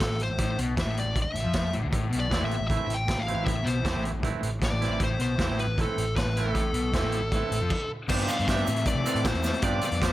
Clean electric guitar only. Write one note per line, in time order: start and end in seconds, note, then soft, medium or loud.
2.31 2.56 E3 medium
2.31 2.57 A3 medium
2.31 2.57 C4 medium
2.31 2.57 E4 medium
2.69 2.95 E3 medium
2.69 2.95 A3 medium
2.69 2.95 C4 medium
2.69 2.96 E4 medium
3.28 3.53 E3 medium
3.28 3.53 A3 medium
3.28 3.53 C4 medium
3.28 3.53 E4 medium
3.85 4.10 E3 medium
3.85 4.11 A3 medium
3.85 4.10 C4 medium
3.85 4.10 E4 medium
4.23 4.48 E3 medium
4.23 4.49 A3 medium
4.23 4.49 C4 medium
4.23 4.49 E4 medium
4.81 5.07 E3 medium
4.81 5.07 A3 medium
4.81 5.07 C4 medium
4.81 5.07 E4 medium
5.40 5.65 E3 medium
5.40 5.65 A3 medium
5.40 5.66 C4 medium
5.40 5.66 E4 medium
5.78 6.03 E3 medium
5.78 6.04 A3 medium
5.78 6.04 C4 medium
5.78 6.04 E4 medium
6.37 6.63 E3 medium
6.37 6.63 A3 medium
6.37 6.62 C4 medium
6.37 6.62 E4 medium
6.95 7.20 E3 medium
6.95 7.20 A3 medium
6.95 7.20 C4 medium
6.95 7.20 E4 medium
7.34 7.58 E3 medium
7.34 7.58 A3 medium
7.34 7.59 C4 medium
7.34 7.59 E4 medium
8.10 8.35 F3 medium
8.10 8.35 C4 medium
8.10 8.35 D4 medium
8.10 8.36 G4 loud
8.49 8.68 F3 medium
8.49 8.68 C4 medium
8.49 8.68 D4 medium
8.49 8.68 G4 medium
9.05 9.32 E3 medium
9.05 9.31 C4 loud
9.05 9.31 E4 loud
9.05 9.31 A4 loud
9.63 9.88 F3 medium
9.63 9.89 C4 medium
9.63 9.89 D4 loud
9.63 9.89 G4 loud
10.01 10.13 F3 medium
10.01 10.13 C4 medium
10.01 10.13 D4 medium
10.01 10.13 G4 medium